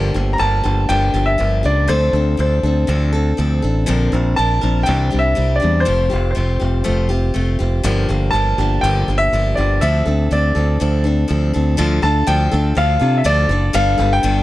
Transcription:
Already playing: G1 G2 D3 F3 A#3 D4 G4
0.14 G1 F3 A#3 D4 G4
0.33 A#5
0.38 G1 F3 A#3 D4 G4 A5
0.63 G1 F3 A#3 D4 G4
0.89 G1 G2 D3 F3 A#3 D4 G4 G5
1.14 G1 F3 A#3 D4 G4
1.26 E5
1.38 G1 F3 A#3 D4 G4
1.63 C#2 F3 A#3 D4 G4 D5
1.88 D2 D3 F3 C4 D4 A4 C5
2.13 D2 C4 D4 A4
2.37 D2 F3 C4 D4 A4 C5
2.63 D2 C4 D4 A4
2.87 D2 D3 F3 C4 D4 A4
3.13 C4 D4 A4
3.37 D2 F3 C4 D4 A4
3.62 A1 C4 D4 A4
3.86 A#1 A#2 D3 F3 C4 D4 A#4
4.12 A#1 F3 C4 D4 A#4
4.36 A#1 F3 C4 D4 A#4 A5
4.61 A#1 F3 C4 D4 A#4
4.83 C3 E3 G3 C4 D4 G4 G5
4.89 C2
5.11 C2 G3 C4 D4 G4
5.19 E5
5.35 C2 G3 C4 D4 G4
5.56 D5
5.60 G3 C4 D4 G4
5.64 E2
5.80 C5
5.85 F1 F3 A3 C4 F4 G4
6.10 F1 C4 F4 G4
6.31 A3 C5
6.35 F1 C4 F4 G4
6.60 F1 C4 F4 G4
6.84 F1 F3 A3 C4 F4 G4
7.09 C4 F4 G4
7.34 F1 A3 C4 F4 G4
7.59 F1 C4 F4 G4
7.83 G1 G2 D3 F3 A#3 D4 G4
8.09 G1 F3 A#3 D4 G4
8.31 G1 F3 A#3 A5
8.35 D4 G4
8.58 G1 F3 A#3 D4 G4
8.81 G1 G2 D3 F3 A#3 D4 G4 G5
9.08 G1 F3 A#3 D4 G4
9.18 E5
9.33 G1 F3 A#3 D4 G4
9.55 G1 F3 A#3 D4 G4 D5
9.81 D2 D3 F3 C4 D4 A4 E5
10.06 D2 C4 D4 A4
10.31 D2 F3 C4 D4 A4 D5
10.55 D2 C4 D4 A4
10.80 D2 D3 F3 C4 D4 A4
11.04 C4 D4 A4
11.28 D2 F3 C4 D4 A4
11.53 D2 C4 D4 A4
11.77 D2 D3 F3 D4 F4 A4
12.02 D2 D4 F4 A4 A5
12.27 D2 D3 F3 D4 F4 A4 G5
12.51 D2 D4 F4 A4
12.75 D2 F3 D4 F4 A4 F5
12.99 C3 D4 F4 A4
13.18 E5
13.24 D2 D3 F3 D4 F4 A4 D5
13.49 F#1 D4 F4 A4
13.73 G1 G2 D3 G3 B3 D4 A4 F5
13.98 G1 G3 B3 D4 A4
14.13 G5
14.23 G1 G2 D3 G3 B3 D4 A4

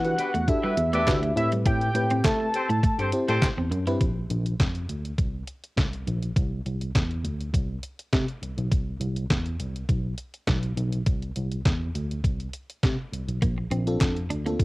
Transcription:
Already playing: E3 F#5
0.04 D4 F#4 G4 B4, closed hi-hat
0.18 B3 G4 B4, muted clean electric guitar stroke, closed hi-hat
0.34 E2 A3, closed hi-hat
0.48 D4 F#4 G4 A4 E5, kick, closed hi-hat
0.62 G3 B3 G4 B4
0.77 E2, muted clean electric guitar stroke, closed hi-hat
0.92 A3 D4 G4 B4 D5 E5, closed hi-hat
1.07 D2 A3 D4 F#4 G4 B4, kick, snare, clap, closed hi-hat
1.23 muted clean electric guitar stroke, closed hi-hat
1.36 A2 C4 E4 G4 B4 E5, closed hi-hat
1.52 G3, closed hi-hat
1.66 A2 A3 G5, kick, closed hi-hat
1.81 closed hi-hat
1.95 A2 C4 E4 G4 B4, muted clean electric guitar stroke, closed hi-hat
2.10 C4, closed hi-hat
2.25 A3 C4 A5, kick, snare, clap, closed hi-hat
2.40 muted clean electric guitar stroke
2.54 C4 G4 A4 C5, closed hi-hat
2.69 A2 A3, closed hi-hat
2.83 A3, kick, closed hi-hat
2.98 G2 C4 G4 A4 C5, muted clean electric guitar stroke, closed hi-hat
3.12 C4 E4 G4 C5, closed hi-hat
3.28 A2 A3 C4 G4 A4 C5, closed hi-hat
3.42 kick, snare, clap, closed hi-hat
3.58 E2 C4
3.71 F#2, muted clean electric guitar stroke, closed hi-hat
3.87 G2 C4 E4 G4 B4, closed hi-hat
4.01 A#1, kick, closed hi-hat
4.30 A#1, closed hi-hat
4.46 closed hi-hat
4.60 F2, kick, snare, clap, closed hi-hat
4.75 closed hi-hat
4.89 D2, closed hi-hat
5.05 closed hi-hat
5.18 C2, kick, closed hi-hat
5.48 closed hi-hat
5.64 closed hi-hat
5.77 C2, kick, snare, clap, closed hi-hat
5.93 closed hi-hat
6.06 A#1, closed hi-hat
6.23 closed hi-hat
6.36 C2, kick, closed hi-hat
6.66 C2, closed hi-hat
6.81 closed hi-hat
6.95 E2, kick, snare, clap, closed hi-hat
7.11 closed hi-hat
7.24 D2, closed hi-hat
7.41 closed hi-hat
7.54 C2, kick, closed hi-hat
7.83 closed hi-hat
7.99 closed hi-hat
8.13 C3, kick, snare, clap, closed hi-hat
8.28 closed hi-hat
8.42 C2, closed hi-hat
8.58 B1, closed hi-hat
8.71 C2, kick, closed hi-hat
9.01 C2, closed hi-hat
9.16 closed hi-hat
9.30 E2, kick, snare, clap, closed hi-hat
9.46 closed hi-hat
9.59 C2, closed hi-hat
9.76 closed hi-hat
9.89 B1, kick, closed hi-hat
10.18 closed hi-hat
10.34 closed hi-hat
10.47 B1, kick, snare, clap, closed hi-hat
10.63 closed hi-hat
10.77 B1, closed hi-hat
10.93 closed hi-hat
11.06 C2, kick, closed hi-hat
11.22 closed hi-hat
11.36 C2, closed hi-hat
11.52 closed hi-hat
11.65 E2, kick, snare, clap, closed hi-hat
11.95 D2, closed hi-hat
12.11 closed hi-hat
12.24 C2, kick, closed hi-hat
12.40 closed hi-hat
12.53 closed hi-hat
12.70 closed hi-hat
12.83 C3, kick, snare, clap, closed hi-hat
13.13 C2, closed hi-hat
13.28 B1, closed hi-hat
13.42 A#1 A#3, kick, closed hi-hat
13.58 muted clean electric guitar stroke
13.71 A#1 C4, closed hi-hat
13.87 C4 D4 F4 A4, closed hi-hat
14.01 F2, muted clean electric guitar stroke, kick, snare, clap, closed hi-hat
14.17 closed hi-hat
14.30 D2 D4, closed hi-hat
14.46 A#3 C4 D4 F4 A4, closed hi-hat
14.60 C2, kick, closed hi-hat

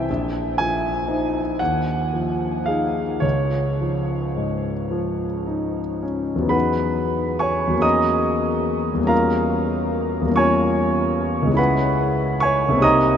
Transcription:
Already playing: C2 E3 E4 C5 E5 G5
0.10 A#1
0.58 F3 G#5
1.08 D#4 C5
1.59 D#2 F#5
2.13 F3
2.66 D#4 G#4 F5
3.20 C#2 C#5
3.81 F3
4.36 G#2
4.91 F3
5.47 D#4
6.02 C#4
6.36 E2 F#3
6.42 B3 D#4
6.48 G#4 B4 F#5 B5
7.39 C#5 G#5 C#6
7.67 E2 F#3
7.73 A#3 C#4
7.80 G#4 D#5 A#5 D#6
8.94 E2 G3
8.99 A#3 C#4
9.06 F4 A#4 F5 A#5
10.21 E2 G3
10.27 A#3 C#4
10.34 F4 C#5 G#5 C#6
11.42 C#2
11.47 G#3 C#4
11.53 E4 B5
11.59 B4 F#5
12.40 C#5 G#5 C#6
12.69 C2 A#3
12.75 C4 D#4
12.81 G4 D#5 A#5 D#6

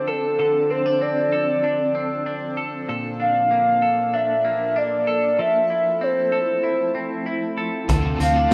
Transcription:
Already playing: D3 F3 C4 D4 A4
0.08 A4
0.39 D3 A4
0.70 C4 C5
0.86 D4
1.01 C4 D5
1.32 A4
1.64 D4
1.95 C4
2.26 D4
2.57 A4
2.89 A#2 A#3 D4 A4
3.20 D4 F5
3.51 A#3
3.82 A4
4.14 D4 E5
4.45 A#3
4.76 D4 D5
5.07 A4
5.39 F3 A3 C4 E4 A4 E5
5.70 E4
6.01 C4 C5
6.32 A4
6.64 E4
6.95 C4
7.26 E4
7.58 A4
7.88 D2 D3 A3 C4 D4 F4 A4, kick, closed hi-hat
8.20 D2 C4 F4 A4 F5, closed hi-hat
8.36 D4
8.51 A3

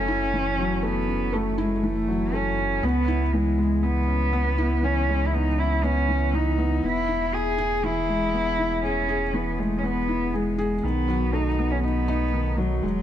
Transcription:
Already playing: F#1 E3 F#3 A3 C#4
0.08 E4
0.33 E3
0.58 F#3
0.83 A3 B3
1.08 C#4
1.33 A3
1.58 G#3 E4
1.83 E3 A3
2.08 F#3
2.33 A3 C#4
2.58 C#4
2.83 C#2 B3
3.08 E4
3.33 E3 G#3
3.58 G#3
3.83 B3
4.08 C#4
4.33 B3
4.58 E4
4.83 E3 C#4
5.08 G#3
5.27 E4
5.33 B3 D#4
5.58 C#4 E4
5.83 B3 C#4
6.09 E3
6.33 E3 D#4
6.58 B3
6.83 E1 B3 E4
7.09 E4
7.33 G#4
7.58 G#4
7.83 E3 E4
8.08 G#3
8.33 B3
8.58 E4
8.83 C#4 G#4
9.09 G#4
9.33 E3 B3
9.58 G#3 A3
9.78 C#4
9.83 B3
10.08 E4
10.33 G#3 G#4
10.58 G#4
10.83 B1 D#3 B3
11.08 F#3
11.33 A3 D#4
11.59 B3
11.71 C#4
11.83 B3 D#4
12.08 D#4
12.33 D#3
12.58 F#3
12.83 E1 G#3

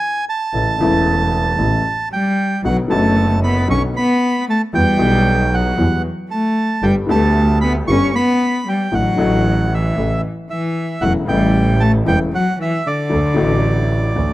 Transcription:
Already playing: G#5
0.29 A5
0.53 A1 A2 C#3 E3 A3 E4
0.79 E1 E2 C#3 E3 A3 E4
1.58 A1 A2 C#3 E3 A3 E4
2.12 G3 G5
2.63 B1 B2 D3 F#3 B3 F#4 F#5
2.88 F#1 F#2 D3 F#3 A3 B3 F#4 A5
3.44 B3 B5
3.67 B1 B2 D3 F#3 B3 C#4 F#4 C#6
3.96 B3 B5
4.49 A3 A5
4.73 E2 E3 G3 B3 F#4 G5
4.97 B1 B2 E3 G3 B3
5.01 G4
5.53 F#3 F#5
5.78 E2 E3 G3 B3 F#4
6.30 A3 A5
6.82 G1 G2 D3 G3 B3 G4 G5
7.08 D2 D3 G3 A3 B3 G4 A5
7.61 B3 B5
7.88 G1 G2 D3 G3 B3 C#4 G4 C#6
8.15 B3 B5
8.68 G3 G5
8.92 A1 A2 D3 F#3 A3 F#4 F#5
9.16 A1 A2 D3 F#3 A3 F#4
9.73 E3 E5
9.96 A1 A2 C#3 E3 A3 E4
10.50 E3 E5
11.01 E1 E2 C#3 E3 F#3 A3 E4 F#5
11.25 A1 A2 C#3 E3 G3 A3 G5
11.30 E4
11.80 A3 A5
12.05 E1 E2 C#3 E3 G3 A3 E4 G5
12.32 F#3 F#5
12.60 E3 E5
12.86 D3 D5
13.09 D2 D3 F#3 A3 F#4
13.34 A1 A2 D3 F#3 A3 F#4
14.15 D2 D3 F#3 A3 F#4

